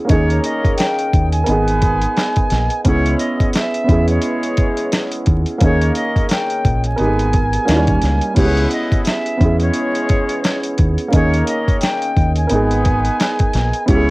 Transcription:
Already playing: upright piano B3 C#4 E4 G#4
0.05 upright piano A#3 C#4, flute C#5
0.09 fingered electric bass D#2, horn section D#3 A#3 C#4 A#4, upright piano D#4 G#4, kick, closed hi-hat
0.30 closed hi-hat
0.44 flute D#5, closed hi-hat
0.64 kick, closed hi-hat
0.76 flute G5, snare, closed hi-hat
0.98 closed hi-hat
1.13 fingered electric bass D#2, kick, closed hi-hat
1.31 flute G#5, closed hi-hat
1.44 upright piano B3 A#4, closed hi-hat
1.48 fingered electric bass G#1, horn section G#3 B3 D#4 B4, upright piano D#4 G#4
1.68 closed hi-hat
1.82 kick, closed hi-hat
2.01 closed hi-hat
2.17 snare, closed hi-hat
2.36 kick, closed hi-hat
2.50 fingered electric bass A#1, snare, closed hi-hat
2.70 closed hi-hat
2.85 fingered electric bass C#2, horn section G#3 C#4 E4 C#5, upright piano B3 C#4 E4 G#4, flute C#5, kick, closed hi-hat
3.06 closed hi-hat
3.18 flute D#5, closed hi-hat
3.40 kick, closed hi-hat
3.53 flute E5, snare, closed hi-hat
3.74 closed hi-hat
3.84 upright piano B3 C#4
3.89 fingered electric bass E2, horn section E3 G#3 C#4 G#4, upright piano E4 G#4, kick, closed hi-hat
4.08 flute C#5, closed hi-hat
4.22 closed hi-hat
4.43 closed hi-hat
4.57 kick, closed hi-hat
4.77 closed hi-hat
4.92 snare, closed hi-hat
5.12 closed hi-hat
5.26 fingered electric bass D#2, kick, closed hi-hat
5.46 closed hi-hat
5.58 fingered electric bass D#2, upright piano A#3 C#4, flute C#5, kick, closed hi-hat
5.62 horn section D#3 A#3 C#4 A#4, upright piano D#4 G#4
5.81 closed hi-hat
5.95 flute D#5, closed hi-hat
6.16 kick, closed hi-hat
6.29 flute G5, snare, closed hi-hat
6.50 closed hi-hat
6.65 fingered electric bass A#1, kick, closed hi-hat
6.84 flute G#5, closed hi-hat
6.96 fingered electric bass G#1, horn section G#3 B3 D#4 B4, upright piano B3 D#4 G4 A#4, closed hi-hat
7.06 upright piano G#4
7.19 closed hi-hat
7.33 kick, closed hi-hat
7.53 closed hi-hat
7.65 fingered electric bass D#2, horn section G3 A#3 C#4 C#5, upright piano A#3 C#4 D#4 E4, snare, closed hi-hat
7.75 upright piano G3
7.87 kick, closed hi-hat
8.02 fingered electric bass C#2, snare, closed hi-hat
8.22 closed hi-hat
8.34 fingered electric bass C#2, horn section G#3 B3 E4 B4, upright piano B3 C#4 E4 G4, flute C#5, kick, closed hi-hat, crash
8.45 upright piano G#4
8.57 closed hi-hat
8.71 flute D#5, closed hi-hat
8.92 kick, closed hi-hat
9.05 flute E5, snare, closed hi-hat
9.26 closed hi-hat
9.37 fingered electric bass E2, horn section E3 G#3 C#4 G#4, upright piano B3 C#4, kick, closed hi-hat
9.42 upright piano E4 G#4
9.60 flute C#5, closed hi-hat
9.74 closed hi-hat
9.95 closed hi-hat
10.09 kick, closed hi-hat
10.29 closed hi-hat
10.44 snare, closed hi-hat
10.63 closed hi-hat
10.78 fingered electric bass D#2, kick, closed hi-hat
10.98 closed hi-hat
11.08 upright piano A#3 C#4
11.12 fingered electric bass D#2, horn section D#3 A#3 C#4 A#4, upright piano D#4 G#4, flute C#5, kick, closed hi-hat
11.33 closed hi-hat
11.47 flute D#5, closed hi-hat
11.68 kick, closed hi-hat
11.80 flute G5, snare, closed hi-hat
12.02 closed hi-hat
12.17 fingered electric bass D#2, kick, closed hi-hat
12.36 flute G#5, closed hi-hat
12.47 horn section G#3 B3 D#4 B4, upright piano B3 A#4, closed hi-hat
12.51 fingered electric bass G#1, upright piano D#4 G#4
12.71 closed hi-hat
12.85 kick, closed hi-hat
13.05 closed hi-hat
13.20 snare, closed hi-hat
13.39 kick, closed hi-hat
13.54 fingered electric bass A#1, snare, closed hi-hat
13.74 closed hi-hat
13.86 fingered electric bass C#2, horn section G#3 C#4 E4 C#5, upright piano B3 C#4 E4 G4, flute C#5, kick, closed hi-hat
13.96 upright piano G#4

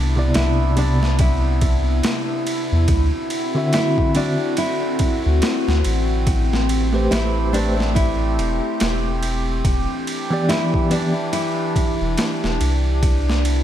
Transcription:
Already playing: analog synth bass C2, ambient pad C3 B3 D4 E4
0.16 tine electric piano C3 B3 E4 D5
0.34 analog synth bass C2, nylon-string guitar E4, snare, ride
0.76 tine electric piano C3 B3 E4 D5, nylon-string guitar D4, ride
1.03 snare
1.19 nylon-string guitar E4, kick, ride
1.61 kick, ride
2.03 snare, ride
2.47 ride
2.72 analog synth bass E2
2.88 analog synth bass D2, ambient pad D3 C4 F#4, kick, ride
3.30 ride
3.55 tine electric piano D3 C4 F#4 E5
3.73 nylon-string guitar E4, snare, ride
3.98 kick
4.15 tine electric piano D3 C4 F#4 E5, nylon-string guitar D4, ride
4.57 nylon-string guitar E4, ride
4.99 kick, ride
5.26 analog synth bass D2
5.42 snare, ride
5.68 analog synth bass D2, snare
5.84 analog synth bass A1, ride
6.25 ambient pad A3 G4, kick, ride
6.53 snare
6.69 ride
6.93 tine electric piano A3 G4 B4 C5
7.11 analog synth bass A1, nylon-string guitar E4, snare, ride
7.53 tine electric piano A3 G4 B4 C5, nylon-string guitar D4, ride
7.80 snare
7.95 nylon-string guitar E4, kick, ride
8.39 analog synth bass E1, ride
8.80 analog synth bass E1, snare, ride
9.23 ride
9.64 analog synth bass E1, ambient pad E3 D4, kick, ride
10.07 ride
10.30 tine electric piano E3 B3 G4 D5
10.49 nylon-string guitar E4, snare, ride
10.74 kick
10.90 tine electric piano E3 B3 G4 D5, nylon-string guitar D4, ride
11.33 nylon-string guitar E4, ride
11.76 kick, ride
12.01 analog synth bass E1
12.18 snare, ride
12.44 analog synth bass E1, snare
12.61 analog synth bass C2, ride
13.02 ambient pad C3 B3 E4, kick, ride
13.30 snare
13.45 ride

